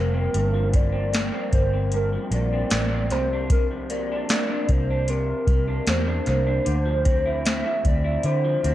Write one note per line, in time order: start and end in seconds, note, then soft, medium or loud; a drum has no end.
0.00 0.26 F1 medium
0.00 0.33 G2 medium
0.00 0.54 F3 medium
0.00 0.73 A#3 medium
0.00 0.13 C4 medium
0.00 0.77 A#4 medium
0.14 0.92 C4 medium
0.34 1.29 G1 medium
0.34 1.92 G2 medium
0.34 closed hi-hat medium
0.54 2.13 F3 soft
0.74 1.13 A#3 medium
0.74 1.53 D5 loud
0.74 kick medium
0.74 closed hi-hat medium
0.92 1.34 C4 medium
1.13 1.53 A#3 medium
1.13 snare loud
1.13 closed hi-hat medium
1.34 1.73 C4 medium
1.53 2.16 G1 medium
1.53 2.31 A#3 medium
1.53 1.90 C5 medium
1.53 kick medium
1.53 closed hi-hat medium
1.73 2.52 C4 medium
1.92 3.19 G2 medium
1.92 2.10 A#4 medium
1.92 closed hi-hat medium
2.13 3.70 F3 medium
2.31 2.63 A#1 medium
2.31 2.73 A#3 medium
2.31 3.13 D5 loud
2.31 closed hi-hat medium
2.53 2.93 C4 medium
2.70 3.12 A1 medium
2.70 3.54 A#3 medium
2.70 snare loud
2.70 closed hi-hat medium
2.94 3.32 C4 medium
3.10 4.22 C2 medium
3.10 3.50 C3 medium
3.10 3.50 C5 medium
3.10 snare soft
3.10 closed hi-hat medium
3.33 4.11 D4 medium
3.50 5.07 C3 medium
3.50 3.66 A#4 medium
3.50 kick loud
3.50 closed hi-hat medium
3.71 6.85 F3 medium
3.90 4.29 A#3 medium
3.90 4.73 D5 loud
3.90 closed hi-hat medium
4.12 4.50 D4 medium
4.29 4.68 A#3 medium
4.29 snare loud
4.29 closed hi-hat medium
4.50 4.90 D4 medium
4.69 5.32 C2 medium
4.69 5.46 A#3 medium
4.69 5.11 C5 medium
4.69 kick medium
4.69 closed hi-hat medium
4.91 5.67 D4 medium
5.08 6.65 C3 medium
5.08 5.88 A#4 loud
5.08 closed hi-hat medium
5.47 5.79 C2 medium
5.47 5.86 A#3 soft
5.47 kick loud
5.47 closed hi-hat medium
5.68 6.08 D4 medium
5.87 6.19 E2 medium
5.87 6.26 A#3 medium
5.87 6.25 C5 medium
5.87 snare loud
5.87 closed hi-hat medium
6.08 6.46 D4 medium
6.26 6.59 C2 medium
6.26 6.75 A#3 medium
6.26 7.47 C5 loud
6.26 snare soft
6.26 closed hi-hat medium
6.47 7.08 D4 medium
6.65 7.61 D2 medium
6.65 8.25 D3 medium
6.65 closed hi-hat medium
6.85 8.44 F3 medium
7.05 7.45 C4 medium
7.05 kick medium
7.05 closed hi-hat medium
7.26 7.65 E4 medium
7.45 7.86 C4 medium
7.45 7.88 E5 loud
7.45 snare loud
7.45 closed hi-hat medium
7.66 8.03 E4 medium
7.85 8.16 D2 medium
7.85 8.64 C4 soft
7.85 8.27 D5 medium
7.85 kick medium
7.85 closed hi-hat medium
8.04 8.74 E4 medium
8.23 8.56 D3 medium
8.23 8.74 D3 medium
8.23 8.74 C5 loud
8.23 closed hi-hat medium
8.44 8.74 F3 medium
8.64 8.74 D2 medium
8.64 8.74 C4 medium
8.64 closed hi-hat medium